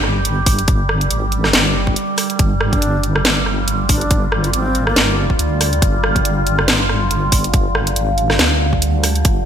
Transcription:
Already playing: G1 D3 G3 G4
0.04 cross-stick
0.25 G1, closed hi-hat
0.46 kick, open hi-hat
0.59 closed hi-hat
0.68 kick, closed hi-hat
0.89 cross-stick
1.01 closed hi-hat
1.11 G#1, closed hi-hat
1.32 closed hi-hat
1.44 cross-stick, snare
1.53 G1, snare, closed hi-hat
1.87 kick
1.96 closed hi-hat
2.18 cross-stick, open hi-hat
2.30 closed hi-hat
2.39 G1 F4, kick, closed hi-hat
2.61 cross-stick
2.73 D4, kick, closed hi-hat
2.82 closed hi-hat
3.03 closed hi-hat
3.16 cross-stick
3.25 snare, closed hi-hat
3.46 cross-stick
3.68 G1, closed hi-hat
3.89 D4, kick, open hi-hat
4.01 closed hi-hat
4.11 kick, closed hi-hat
4.32 cross-stick
4.44 F4, closed hi-hat
4.53 G#1 C4, closed hi-hat
4.75 closed hi-hat
4.87 A#3, cross-stick
4.96 G1, snare, closed hi-hat
5.30 kick
5.39 D2, closed hi-hat
5.61 cross-stick, open hi-hat
5.73 closed hi-hat
5.82 G1, kick, closed hi-hat
6.04 cross-stick
6.16 kick, closed hi-hat
6.25 closed hi-hat
6.47 closed hi-hat
6.59 cross-stick
6.68 snare, closed hi-hat
6.89 cross-stick
7.11 G1, closed hi-hat
7.32 kick, open hi-hat
7.44 closed hi-hat
7.54 kick, closed hi-hat
7.75 cross-stick
7.87 closed hi-hat
7.96 G#1, closed hi-hat
8.18 closed hi-hat
8.30 cross-stick, snare
8.39 D2, snare, closed hi-hat
8.73 kick
8.82 closed hi-hat
9.04 cross-stick, open hi-hat
9.15 closed hi-hat
9.25 G1, kick, closed hi-hat

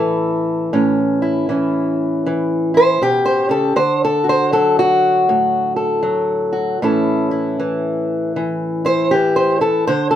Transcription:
Already playing: A2 E3 C#4 E4 A4
0.73 A2 C#4
1.22 E4
1.49 E3 C#4
2.26 E3
2.74 E4 C5
3.01 B2 G4
3.25 C5
3.49 C#3 A4
3.76 D3 C5
4.05 A4
4.24 F#4
4.29 C5
4.52 F#3 A4
4.79 F#4
5.29 A2
5.76 A4
6.03 F#3
6.53 F#4
6.82 A2 E3 C#4 E4 A4
7.31 E4
7.59 E3
8.36 E3
8.85 E4 C5
9.11 E3 G4
9.36 C5
9.61 E4 A4
9.87 D3 C5
10.11 A4

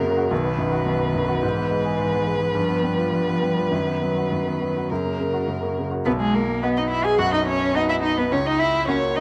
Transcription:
Already playing: F#2 C#3 A#3 F#4 A#4
0.03 C#3
0.17 F#4
0.31 B1 D#3 B4
0.44 B3
0.58 F#2
0.72 F#4
0.86 B1
1.00 B3
1.14 F#2
1.28 F#4
1.42 G#2 E3
1.57 B3
1.71 G#3
1.85 G#4
1.99 G#2
2.12 B3
2.27 G#3
2.41 G#4
2.55 G2 F3
2.69 B3
2.83 G3
2.98 F4
3.13 G2
3.27 B3
3.42 G3
3.57 F4
3.71 F#2 D#3
3.87 B3
4.02 F#3
4.17 F#4
4.32 F#2
4.47 B3
4.61 F#3
4.77 F#4
4.90 F#2 C#3 A#4
5.06 A#3
5.20 C#3
5.34 F#4
5.48 F#2
5.63 A#3
5.78 C#3
5.91 F#4
6.05 B1 B3 B4
6.20 G#3 G#4
6.34 A#3 A#4
6.63 B3 F#4 B4 D#5
6.77 D#4 D#5
6.90 E4 E5
7.05 G#4 G#5
7.19 F#2 F#4 F#5
7.33 D#4 D#5
7.47 C#4 C#5
7.75 B3 D#4 F#4 D#5
7.89 E4 E5
8.02 D#4 D#5
8.18 B3 B4
8.32 C#2 C#4 C#5
8.46 D#4 D#5
8.60 E4 E5
8.87 A#3 C#4 F#4 C#5
9.15 D#4 D#5

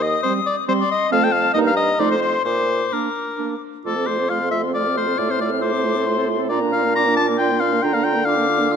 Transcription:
Already playing: D#2 D#6
0.03 D#5
0.23 G3 C4 C5
0.46 D5
0.68 G3 C4 C5 C6
0.81 D5
0.91 D#5
1.11 F2 A3 C4 F5 A5
1.24 G5
1.32 F5
1.54 G2 A#3 D#4 D#5 A#5
1.67 F5
1.76 D#5
1.99 F2 A3 D#4 D5 C6
2.11 C5
2.21 C5
2.45 A#2 C5 D6
2.93 A#3 D4 A#4
3.38 A#3 D4
3.85 F2 A3 F4 A4 D6
3.96 C4 A4
4.07 A3 F4 C5
4.19 C4 A4
4.29 A3 F4 F5 C6
4.40 C4 A4
4.51 A3 F4 E5
4.63 C4 A4
4.74 A3 F4 D5 F6
4.85 C4 A4
4.96 A3 F4 C5
5.07 C4 A4
5.18 A2 A3 F4 D5
5.29 C4 A4 C5
5.40 A3 F4 D5
5.51 C4 A4
5.61 A3 F4 C5 D6
5.73 C4 A4
5.84 A3 F4
5.96 C4 A4
6.07 A3 F4 C6
6.18 C4 A4
6.29 A3 F4
6.39 C4 A4
6.49 A#2 D4 F4 D5 A#5
6.61 A#3 D4
6.72 D4 F4 F5
6.83 A#3 D4
6.95 D4 F4 A#5 D6
7.07 A#3 D4
7.16 D4 F4 A5
7.29 A#3 D4
7.38 D4 F4 G5 C6
7.51 A#3 D4
7.60 D4 F4 F5
7.73 A#3 D4
7.82 D3 D4 F4 G5 A#5
7.94 A#3 D4 F5
8.04 D4 F4 G5
8.15 A#3 D4
8.25 D4 F4 F5 D6
8.38 A#3 D4
8.48 D4 F4
8.59 A#3 D4
8.70 D4 F4 F6

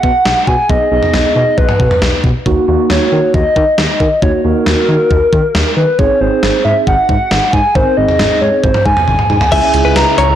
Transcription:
Already playing: F#5
0.03 B2, kick
0.25 B1, snare
0.47 B2 G#5, kick
0.69 B1 B3 D#4 G#4 D#5, kick
0.91 B1 B3 D#4 G#4 D#5
1.03 mid tom
1.14 B1, snare
1.36 B2 D#5
1.58 B1 B4, kick
1.69 mid tom
1.80 B2, kick
1.91 mid tom
2.02 B1, snare
2.24 B2, kick
2.46 D#2 A#3 D#4 F#4, kick
2.68 D#2 A#3 D#4 F#4
2.90 D#2 C#5, snare
3.12 D#3
3.34 D#2 D#5, kick
3.56 D#3, kick
3.78 D#2 D#5, snare
4.00 D#3, kick
4.22 D#2 A#3 D#4 F#4 C#5, kick
4.44 D#2 A#3 D#4 F#4 A#4
4.66 D#2, snare
4.89 D#3
5.11 D#2, kick
5.33 D#3, kick
5.55 D#2, snare
5.76 D#3 B4
5.98 G#1 C4 D#4 G#4 C#5, kick
6.21 G#1 C4 D#4 G#4 C5
6.43 G#1, snare
6.65 G#2 E5
6.87 G#1 F#5, kick
7.09 G#2, kick
7.31 G#1, snare
7.53 G#2 G#5, kick
7.75 G#1 C4 D#4 A#4 C5, kick
7.97 G#1 C4 D#4 G#4 D#5
8.09 mid tom
8.19 G#1, snare
8.41 G#2 C#5
8.63 G#1 C5, kick
8.74 mid tom
8.86 G#2 G#5, kick
8.97 mid tom
9.08 G#1, high tom
9.19 mid tom
9.30 G#2, mid tom
9.41 floor tom
9.52 C#2 C#3 G#3 C#4 E4 G#4 E5 G#5, kick, closed hi-hat, crash
9.74 C#2, closed hi-hat
9.85 C#2 B4
9.96 C#2 A#5, snare, closed hi-hat
10.18 C#2 C#5 A#5, closed hi-hat
10.29 C#2

